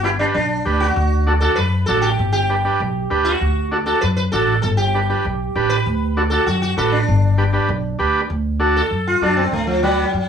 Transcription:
Already playing: upright bass G1
0.03 transistor combo organ D4 G4 B4, sitar E4
0.19 transistor combo organ D4 G4 B4, sitar D4
0.34 upright bass B1, sitar D4
0.65 upright bass D2, transistor combo organ D4 G4 B4
0.80 sitar F#4
0.96 upright bass D2
1.27 transistor combo organ D4 F#4 A4
1.41 transistor combo organ D4 F#4 A4, sitar A4
1.55 upright bass F#2, sitar B4
1.86 upright bass A1, transistor combo organ D4 F#4 A4, sitar A4
2.02 sitar G4
2.19 upright bass G1
2.32 sitar G4
2.49 transistor combo organ D4 G4 B4
2.65 transistor combo organ D4 G4 B4
2.80 upright bass B1
3.10 upright bass D2, transistor combo organ D4 G4 B4
3.25 sitar F#4
3.41 upright bass D2
3.72 transistor combo organ D4 F#4 A4
3.86 transistor combo organ D4 F#4 A4, sitar A4
4.01 upright bass F#2, sitar B4
4.16 sitar B4
4.32 upright bass A1, transistor combo organ D4 F#4 A4, sitar A4
4.62 upright bass G1, sitar A4
4.77 sitar G4
4.94 transistor combo organ D4 G4 B4
5.09 transistor combo organ D4 G4 B4
5.25 upright bass B1
5.55 upright bass A1, transistor combo organ D4 G4 B4
5.69 sitar B4
5.86 upright bass D2
6.17 transistor combo organ D4 F#4 A4
6.30 transistor combo organ D4 F#4 A4, sitar A4
6.47 upright bass F#2, sitar F#4
6.62 sitar F#4
6.77 upright bass A1, transistor combo organ D4 F#4 B4, sitar A4
6.92 sitar D4
7.08 upright bass G1
7.38 transistor combo organ D4 G4 B4
7.53 transistor combo organ D4 G4 B4
7.68 upright bass B1
7.99 upright bass D2, transistor combo organ D4 G4 B4
8.30 upright bass D2
8.60 transistor combo organ D4 F#4 A4
8.77 sitar A4
8.91 upright bass F#2
9.07 sitar F4
9.21 upright bass F#2, transistor combo organ D4 F#4 A4, sitar D4
9.37 sitar C4
9.52 upright bass D2, sitar A3
9.67 sitar F3
9.83 sitar F#3, transistor combo organ D4 F#4 B4
10.13 upright bass F#2

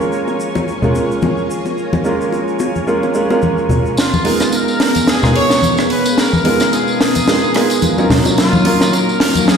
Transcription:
Already playing: grand piano G#3 A#3 C#4 F4 A#4, string machine F4 A#4 C#5 G#5
0.01 shaker
0.12 shaker
0.28 high bongo, shaker
0.40 shaker
0.55 high bongo, high conga, shaker
0.68 shaker
0.82 grand piano G#3 A#3 C#4 F4 A#4, low conga, shaker
0.95 high bongo, shaker
1.11 shaker
1.22 high bongo, high conga, shaker
1.37 shaker
1.51 shaker
1.66 high bongo, shaker
1.78 shaker
1.93 high bongo, high conga, shaker
2.04 grand piano G#3 A#3 C#4 F4 A#4, shaker
2.21 shaker
2.32 high bongo, shaker
2.48 shaker
2.59 high bongo, shaker
2.75 high conga, shaker
2.87 grand piano G#3 A#3 C#4 F4 A#4, shaker
3.03 high bongo, shaker
3.14 grand piano G#3 A#3 C#4 F4 A#4, shaker
3.29 grand piano G#3 A#3 C#4 F4 A#4, high bongo, shaker
3.42 high conga, shaker
3.58 shaker
3.69 high bongo, low conga, shaker
3.86 shaker
3.97 string machine B3 G#4 A#4 F5, trumpet section F4, snare, closed hi-hat, tambourine
4.14 tambourine, high conga
4.24 grand piano G#3 B3 D#4 F4 A#4, open hi-hat, high bongo
4.40 cross-stick, snare, closed hi-hat, tambourine
4.52 trumpet section A#4, closed hi-hat, tambourine
4.68 tambourine
4.80 snare, open hi-hat
4.95 closed hi-hat, tambourine, high conga
5.07 trumpet section G#4, snare, closed hi-hat, tambourine
5.22 grand piano G#3 B3 D#4 F4 A#4, cross-stick, tambourine, low conga
5.34 trumpet section C#5, open hi-hat, high bongo
5.50 snare, closed hi-hat, tambourine
5.62 closed hi-hat, tambourine, high conga
5.77 cross-stick, tambourine
5.90 trumpet section B4, open hi-hat
6.05 closed hi-hat, tambourine
6.18 trumpet section A#4, snare, closed hi-hat, tambourine
6.33 tambourine, high conga
6.44 grand piano G#3 B3 D#4 F4 A#4, open hi-hat, high bongo
6.60 cross-stick, snare, closed hi-hat, tambourine
6.73 trumpet section G#4, closed hi-hat, tambourine
6.88 tambourine
7.01 snare, open hi-hat
7.15 closed hi-hat, tambourine, high conga
7.27 grand piano G#3 B3 D#4 F4 A#4, snare, closed hi-hat, tambourine
7.43 tambourine
7.54 grand piano G#3 B3 D#4 F4 A#4, cross-stick, open hi-hat
7.70 closed hi-hat, tambourine
7.82 closed hi-hat, tambourine, high conga
7.98 grand piano F#3 C#4 D#4 F4 A#4, tambourine, high bongo
8.10 string machine F#3 A#3 D#4 C#5, snare, open hi-hat, low conga
8.25 closed hi-hat, tambourine, high bongo
8.38 trumpet section F4, snare, closed hi-hat, tambourine
8.53 tambourine, high conga
8.65 grand piano F#3 C#4 D#4 F4 A#4, open hi-hat, high bongo
8.81 cross-stick, snare, closed hi-hat, tambourine
8.93 trumpet section A#4, closed hi-hat, tambourine
9.09 tambourine
9.20 snare, open hi-hat
9.35 closed hi-hat, tambourine, high conga
9.48 trumpet section G#4, snare, closed hi-hat, tambourine

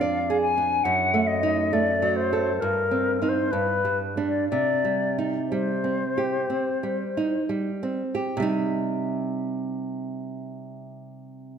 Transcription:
Already playing: nylon-string guitar F2 D4
0.00 nylon-string guitar D5, flute F5
0.30 nylon-string guitar G#4
0.42 flute G#5
0.58 nylon-string guitar D4
0.84 nylon-string guitar F#2, flute F#5
1.14 nylon-string guitar A3
1.27 flute D#5
1.43 nylon-string guitar D#4
1.73 nylon-string guitar A3, flute D5
2.02 nylon-string guitar F#3
2.16 flute C5
2.33 nylon-string guitar A4
2.61 nylon-string guitar G2, flute A#4
2.91 nylon-string guitar C4
3.22 nylon-string guitar C4 D#4
3.29 flute C5
3.51 nylon-string guitar G2, flute B4
3.85 nylon-string guitar G3
4.17 nylon-string guitar G3 D4
4.26 flute D5
4.49 nylon-string guitar C3, flute D5
4.84 nylon-string guitar G3
5.18 nylon-string guitar D#4
5.49 nylon-string guitar G3, flute C5
5.84 nylon-string guitar C4
6.18 nylon-string guitar G4
6.50 nylon-string guitar C4
6.83 nylon-string guitar G3
7.17 nylon-string guitar D#4
7.49 nylon-string guitar G3
7.83 nylon-string guitar C4
8.15 nylon-string guitar G4
8.37 nylon-string guitar C3 G3
8.42 nylon-string guitar D#4

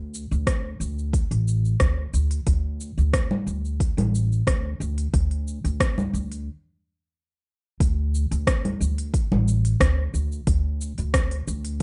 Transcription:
Already playing: upright bass D2
0.14 shaker
0.31 upright bass D2, shaker
0.47 kick, cross-stick, open hi-hat, shaker
0.80 upright bass D2, shaker
0.99 shaker
1.13 kick, open hi-hat, shaker
1.31 upright bass A1, open hi-hat
1.48 shaker
1.65 shaker
1.80 upright bass D2, kick, cross-stick, open hi-hat, shaker
2.13 upright bass D2, shaker
2.31 open hi-hat, shaker
2.47 upright bass D2, kick, open hi-hat, shaker
2.81 shaker
2.98 upright bass D2, shaker
3.13 kick, cross-stick, open hi-hat, shaker
3.31 low conga
3.47 upright bass D2, shaker
3.65 shaker
3.80 kick, open hi-hat, shaker
3.97 upright bass A1, open hi-hat, low conga
4.15 shaker
4.32 shaker
4.47 upright bass D2, kick, cross-stick, open hi-hat, shaker
4.80 upright bass D2, shaker
4.98 open hi-hat, shaker
5.14 upright bass D2, kick, open hi-hat, shaker
5.31 open hi-hat
5.48 shaker
5.64 upright bass D2, open hi-hat, shaker
5.80 kick, cross-stick, open hi-hat, shaker
5.98 low conga, shaker
6.13 upright bass D2, shaker
6.32 open hi-hat, shaker
7.80 upright bass D2, kick, open hi-hat, shaker
8.15 shaker
8.31 upright bass D2, open hi-hat, shaker
8.47 kick, cross-stick, open hi-hat, shaker
8.65 open hi-hat, low conga
8.80 upright bass D2, shaker
8.98 open hi-hat, shaker
9.14 kick, open hi-hat, shaker
9.32 upright bass A1, low conga
9.48 shaker
9.65 open hi-hat, shaker
9.80 upright bass D2, kick, cross-stick, open hi-hat, shaker
10.14 upright bass D2, shaker
10.32 shaker
10.47 upright bass D2, kick, open hi-hat, shaker
10.81 shaker
10.98 upright bass D2, open hi-hat, shaker
11.14 kick, cross-stick, open hi-hat, shaker
11.31 open hi-hat
11.47 upright bass D2, shaker
11.65 open hi-hat, shaker

